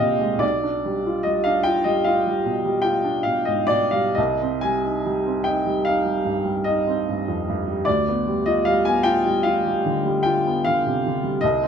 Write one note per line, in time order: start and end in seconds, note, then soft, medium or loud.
0.00 0.38 C2 soft
0.00 0.45 A#2 soft
0.00 0.45 C3 soft
0.00 0.21 G#3 soft
0.00 0.45 D4 soft
0.00 0.44 F4 soft
0.00 0.39 D5 medium
0.00 0.41 D#5 medium
0.00 0.45 F5 medium
0.00 0.44 G5 medium
0.21 0.42 G#3 soft
0.38 4.11 B1 soft
0.38 1.24 D5 medium
0.64 0.97 D4 soft
0.85 1.18 G3 soft
1.06 1.38 F4 soft
1.23 1.58 G3 soft
1.23 1.45 D#5 medium
1.44 1.77 D4 soft
1.44 1.65 F5 medium
1.63 1.98 F4 soft
1.63 1.84 G5 medium
1.84 2.17 G3 soft
1.84 2.05 D#5 medium
2.04 2.38 F4 soft
2.04 2.85 F5 medium
2.27 2.58 G3 soft
2.45 2.77 B2 soft
2.65 2.97 G3 soft
2.82 3.17 F4 soft
2.82 3.24 G5 medium
3.04 3.38 D4 soft
3.23 3.61 B2 soft
3.23 3.46 F5 medium
3.45 3.70 G#2 soft
3.45 3.69 D#5 medium
3.67 4.07 B2 soft
3.67 3.92 D5 medium
3.91 4.17 G3 soft
3.91 4.16 F5 medium
4.15 7.82 C2 medium
4.15 4.62 D#5 medium
4.41 4.77 C4 soft
4.61 4.98 G3 soft
4.61 5.45 G#5 medium
4.84 5.18 D#4 soft
5.06 5.39 G3 soft
5.26 5.59 C4 soft
5.44 5.79 D#4 medium
5.44 5.85 G5 medium
5.66 5.98 G3 soft
5.85 6.18 D#4 soft
5.85 6.65 F5 medium
6.05 6.38 G3 soft
6.25 6.57 G2 soft
6.45 6.78 G3 soft
6.64 6.99 D#4 soft
6.64 7.06 D#5 medium
6.87 7.19 C4 soft
7.09 7.40 G2 soft
7.28 7.47 F2 soft
7.49 7.80 G2 soft
7.67 7.87 G3 soft
7.85 11.38 D2 medium
7.85 8.45 D5 medium
8.09 8.39 B3 soft
8.28 8.59 G3 soft
8.46 8.78 F4 soft
8.46 8.66 D#5 medium
8.65 8.98 G3 soft
8.65 8.85 F5 medium
8.85 9.17 B3 soft
8.85 9.05 G#5 medium
9.03 9.37 F4 medium
9.03 9.43 G5 loud
9.26 9.57 G3 soft
9.43 9.76 F4 soft
9.43 10.22 F5 medium
9.66 9.96 G3 soft
9.86 10.16 D3 soft
10.05 10.36 G3 soft
10.23 10.56 F4 soft
10.23 10.63 G5 medium
10.47 10.77 B3 soft
10.65 10.96 D3 soft
10.65 11.43 F5 medium
10.86 11.04 C3 soft
11.06 11.36 D3 soft
11.23 11.42 G3 soft
11.41 11.68 C2 medium
11.41 11.68 D#5 medium
11.63 11.68 C4 soft